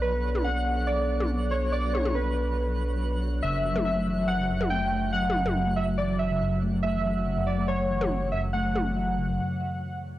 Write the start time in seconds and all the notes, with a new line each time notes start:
Already playing: B1 F#3 B3 D4 A4 B4 D5 F#6
0.02 B4
0.35 high tom
0.44 F#5
0.87 D5
1.20 high tom
1.51 C#5
1.72 D5
1.93 C#5, high tom
2.05 high tom
2.15 B4
3.43 F#1 C#3 F#3 E5
3.54 F#2
3.65 F#3
3.76 A3, high tom
3.85 F#3 E5
3.97 A3
4.08 E3
4.18 F#3
4.28 F#3 F#5
4.39 C#3
4.50 F#2
4.61 F#3, high tom
4.70 A3 G5
4.82 F#3
4.93 A3
5.03 E3
5.13 F#3 F#5
5.24 F#3
5.30 high tom
5.35 C#3
5.46 F#2, high tom
5.56 F#3
5.67 A3
5.76 F#3 E5
5.88 A3
5.98 E3 D5
6.10 F#3
6.19 F#3 E5
6.31 C#3
6.41 F#2
6.52 F#3
6.63 A3
6.73 F#3
6.83 A3 E5 F#5
6.95 E3
7.05 F#3
7.16 F#3
7.27 C#3
7.37 F#2
7.47 F#3 D5
7.59 A3
7.68 F#3 C#5
7.80 A3
7.90 E3
8.01 F#3, high tom
8.12 F#3
8.22 C#3
8.32 F#2 E5
8.44 F#3
8.53 A3 F#5
8.65 F#3
8.76 A3, high tom
8.86 E3
8.97 F#3
9.07 F#3
9.18 C#3
9.29 F#2